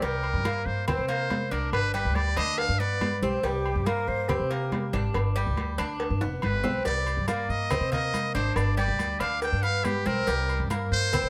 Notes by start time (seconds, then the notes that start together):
0.02 C2 G3 A#4, cowbell, high conga
0.23 high conga, low agogo
0.34 G2
0.45 A#3, cowbell, high conga, low agogo
0.66 G2 C5, high conga
0.88 C4 C5, cowbell, high conga, low conga, low agogo
0.99 C3
1.08 A#3 C5, cowbell, high conga
1.30 cowbell, high conga, low timbale, low agogo
1.51 C2 D4 A#4, cowbell, low agogo
1.73 G1 B4, cowbell, high conga, low agogo
1.94 G3 B4, cowbell, high conga
2.05 D2
2.15 D5, cowbell, high conga, low agogo
2.36 D2 D4 D#5, cowbell, high conga, low agogo
2.58 F5, cowbell, high conga
2.69 G2
2.79 B3 D5, high conga
3.01 cowbell, high conga, low timbale, low agogo
3.22 B1 C4 G4, high conga, low agogo
3.43 C2 G3 G4, cowbell, high conga
3.66 high conga, low agogo
3.76 G2
3.86 A#3 A#4, cowbell, high conga, low agogo
4.08 G2 C5, high conga
4.29 C4 G4, cowbell, high conga, low conga, low agogo
4.40 C3
4.51 A#3, cowbell, high conga
4.72 cowbell, high conga, low timbale, low agogo
4.93 G#1 D4, cowbell, high conga, low agogo
5.14 G1, cowbell, high conga, low agogo
5.36 G3, cowbell, high conga
5.47 D2
5.57 cowbell, high conga, low agogo
5.78 D2 D4, cowbell, high conga, low agogo
6.00 cowbell, high conga
6.10 G2
6.21 F1 B3, high conga, high timbale
6.42 G1 B4, cowbell, high conga, low agogo
6.64 B1 C4, high conga, low timbale, low agogo
6.85 C2 G3 D5, cowbell, high conga, maracas
7.06 high conga, low agogo, maracas
7.17 G2
7.28 A#3 D5, cowbell, high conga, low agogo, maracas
7.49 G2 D#5, high conga, maracas
7.70 C4, cowbell, high conga, low conga, low agogo, maracas
7.81 C3
7.92 A#3 D#5, cowbell, high conga, low conga, maracas
8.14 cowbell, high conga, low agogo, maracas
8.35 G#1 D4 C5, cowbell, low agogo, maracas
8.56 G1 D5, cowbell, high conga, low agogo, maracas
8.77 G3 D5, cowbell, high conga, maracas
8.88 D2
8.99 cowbell, high conga, low agogo, maracas
9.20 D2 D4 F5, cowbell, high conga, low agogo, maracas
9.42 G5, cowbell, high conga, maracas
9.53 G2
9.63 B3 F5, high conga, maracas
9.84 G4, cowbell, high conga, low timbale, low agogo, maracas
10.06 B1 C4 A#4, high conga, low agogo, maracas
10.27 C2 G3, cowbell, high conga, maracas
10.49 high conga, low agogo, maracas
10.60 G2
10.70 A#3, cowbell, high conga, low agogo, maracas
10.92 G2 C5, high conga, maracas
11.13 C4, cowbell, high conga, low conga, low agogo, maracas
11.24 C3